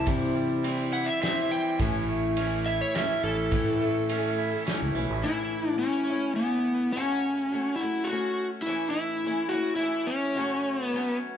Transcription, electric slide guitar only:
0.93 F#5
1.06 E5
1.22 E5
1.51 G5
2.66 E5
2.81 C#5
2.95 E5
3.24 A4
5.24 E4
5.79 C#4
6.36 B3
6.92 C#4
7.76 E4
8.04 F#4
8.62 E4
8.91 E4
9.49 F#4
9.76 E4
10.07 C#4
10.83 B3

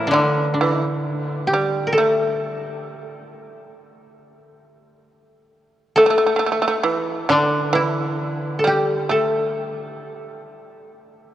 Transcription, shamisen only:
0.14 D3
0.61 E3
1.16 D3
1.53 G3
1.98 A3
5.98 A3
6.06 A3
6.10 A3
6.18 A3
6.26 A3
6.36 A3
6.46 A3
6.52 A3
6.62 A3
6.68 A3
6.83 E3
7.29 D3
7.73 E3
8.64 G3
9.09 A3

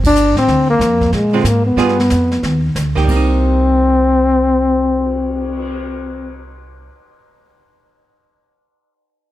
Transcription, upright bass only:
Already playing: G1
0.35 A2
0.47 D2
0.79 F2
1.12 A#2
1.44 G#2
1.76 G2
2.11 F2
2.43 D#2
2.75 D2
3.08 C2

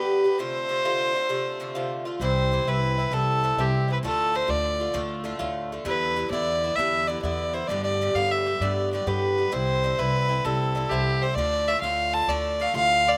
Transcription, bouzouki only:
Already playing: G2 D3 B3 G4
0.24 D3 B3 G4
0.39 C3 D3 A3 F4
0.69 C3 D3 A3 F4
0.85 C3 D3 A3 F4
1.14 D3 A3 F4
1.29 C3 D3 A3 F4
1.60 C3 D3 A3 F4
1.75 C3 D3 A3 F4
2.05 D3 A3 F4
2.21 G2 E3 C4 E4
2.52 G2 E3 C4 E4
2.68 G2 E3 C4 E4
2.98 E3 C4 E4
3.12 G2 E3 C4 E4
3.43 G2 E3 C4 E4
3.58 G2 E3 C4 E4
3.88 E3 C4 E4
4.03 A2 D3 A3 F4
4.34 A2 D3 A3 F4
4.47 A2 D3 A3 F4
4.80 D3 A3 F4
4.94 A2 D3 A3 F4
5.24 A2 D3 A3 F4
5.39 A2 D3 A3 F4
5.72 D3 A3 F4
5.85 G2 D3 B3 E4
6.16 G2 D3 B3 E4
6.33 G2 D3 B3 E4
6.64 D3 B3 E4
6.79 G2 D3 B3 E4
7.07 G2 D3 B3 E4
7.23 G2 D3 B3 E4
7.53 D3 B3 E4
7.69 A2 D3 B3 G4
8.01 A2 D3 B3 G4
8.16 A2 D3 B3 G4
8.46 D3 B3 G4
8.62 A2 D3 B3 G4
8.93 A2 D3 B3 G4
9.07 A2 D3 B3 G4
9.38 D3 B3 G4
9.52 G2 D3 C4 E4
9.83 G2 D3 C4 E4
9.98 G2 D3 C4 E4
10.29 D3 C4 E4
10.45 G2 D3 C4 E4
10.75 G2 D3 C4 E4
10.91 G2 D3 C4 E4
11.23 D3 C4 E4
11.38 A2 D3 A3 F4
11.67 A2 D3 A3 F4
11.83 A2 D3 A3 F4
12.13 D3 A3 F4
12.29 A2 D3 A3 F4
12.60 A2 D3 A3 F4
12.74 A2 D3 A3 F4
13.07 D3 A3 F4

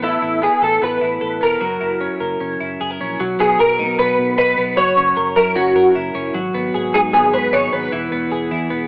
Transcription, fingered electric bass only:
Already playing: A1
0.23 A1
0.62 A1
0.82 A1
1.02 A1
1.22 A1
1.42 E1
1.62 F#1
1.82 F#1
2.21 F#1
2.41 F#1
2.61 F#1
2.81 F#1
3.01 A#1
3.20 B1
3.40 B1
3.60 B1
3.80 B2
3.99 B1
4.19 B2
4.39 B1
4.59 B1
4.78 F#1
4.98 F#1
5.17 F#1
5.37 F#2
5.57 F#1
5.76 F#2
5.96 F#1
6.15 F#1
6.35 G#1
6.55 G#1
6.75 G#1
6.94 G#2
7.14 G#1
7.34 G#2
7.53 G#1
7.73 G#1
7.93 E1
8.12 E1
8.32 E1
8.51 E2
8.71 E1

